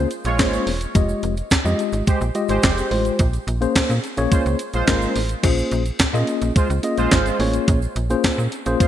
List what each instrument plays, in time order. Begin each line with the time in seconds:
0.11 closed hi-hat, shaker
0.24 fm bass A#1, analog polysynth G#3 F4 C#5, closed hi-hat, shaker
0.39 fm bass G#1, tine electric piano A#3 C#4 G#4 C5, kick, snare, clap, closed hi-hat, shaker
0.54 closed hi-hat, shaker
0.67 fm bass E1, open hi-hat
0.81 closed hi-hat, shaker
0.95 fm bass F1, tine electric piano G#3 F4 G4 D#5, kick, closed hi-hat, shaker
1.09 shaker
1.23 fm bass F1, closed hi-hat, shaker
1.37 closed hi-hat, shaker
1.51 fm bass F2, kick, snare, clap, closed hi-hat, shaker
1.65 fm bass F2, tine electric piano G#3 F4 G4 D#5, shaker
1.79 closed hi-hat, shaker
1.92 fm bass G#1, closed hi-hat, shaker
2.07 analog polysynth G#3 G4 C5, kick, closed hi-hat, shaker
2.21 fm bass A#1, closed hi-hat, shaker
2.35 tine electric piano G#3 F4 G4 D#5, closed hi-hat, shaker
2.48 fm bass G#1, analog polysynth G#3 G4 C5, closed hi-hat, shaker
2.62 fm bass F1, kick, snare, clap, closed hi-hat, shaker
2.78 closed hi-hat, shaker
2.91 fm bass A1, tine electric piano G#3 F4 G4 C5, open hi-hat
3.05 closed hi-hat, shaker
3.19 fm bass A#1, kick, closed hi-hat, shaker
3.33 closed hi-hat, shaker
3.47 fm bass A#1, closed hi-hat, shaker
3.61 tine electric piano A#3 C#4 G#4 C5, closed hi-hat, shaker
3.75 fm bass A#2, kick, snare, clap, closed hi-hat, shaker
3.90 fm bass A#2, closed hi-hat, shaker
4.04 closed hi-hat, shaker
4.17 fm bass A#1, tine electric piano A#3 C#4 G#4 C#5, closed hi-hat, shaker
4.31 analog polysynth G#3 F4 C5, kick, closed hi-hat, shaker
4.46 fm bass C#2, closed hi-hat, shaker
4.59 closed hi-hat, shaker
4.73 fm bass A#1, analog polysynth G#3 F4 C5, closed hi-hat, shaker
4.87 fm bass G#1, tine electric piano A#3 C#4 G#4 A#4, kick, snare, clap, closed hi-hat, shaker
5.02 closed hi-hat, shaker
5.16 fm bass A1, open hi-hat, shaker
5.29 closed hi-hat, shaker
5.43 fm bass A#1, tine electric piano A#3 C#4 F4 G#4 C5, kick, closed hi-hat, crash, shaker
5.58 shaker
5.71 fm bass A#1, closed hi-hat, shaker
5.86 closed hi-hat, shaker
5.99 fm bass A#2, kick, snare, clap, closed hi-hat, shaker
6.13 fm bass A#2, tine electric piano A#3 C#4 F4 G#4 D#5, shaker
6.27 closed hi-hat, shaker
6.42 fm bass A#1, closed hi-hat, shaker
6.56 analog polysynth G#3 F4 C5, kick, closed hi-hat, shaker
6.70 fm bass C#2, closed hi-hat, shaker
6.83 tine electric piano A#3 C#4 F4 G#4 D#5, closed hi-hat, shaker
6.97 fm bass A#1, analog polysynth G#3 F4 C5, closed hi-hat, shaker
7.11 fm bass G#1, kick, snare, clap, closed hi-hat, shaker
7.26 closed hi-hat, shaker
7.40 fm bass A1, tine electric piano A#3 C#4 F4 G#4 C#5, open hi-hat
7.53 closed hi-hat, shaker
7.68 fm bass A#1, kick, closed hi-hat, shaker
7.82 shaker
7.96 fm bass A#1, closed hi-hat, shaker
8.10 tine electric piano A#3 C#4 F4 G#4 C5, closed hi-hat, shaker
8.24 fm bass A#2, kick, snare, clap, closed hi-hat, shaker
8.38 fm bass A#2, shaker
8.52 closed hi-hat, shaker
8.66 fm bass A#1, tine electric piano A#3 C#4 F4 G#4 C5, closed hi-hat, shaker
8.80 analog polysynth G#3 F4 C5, kick, closed hi-hat, shaker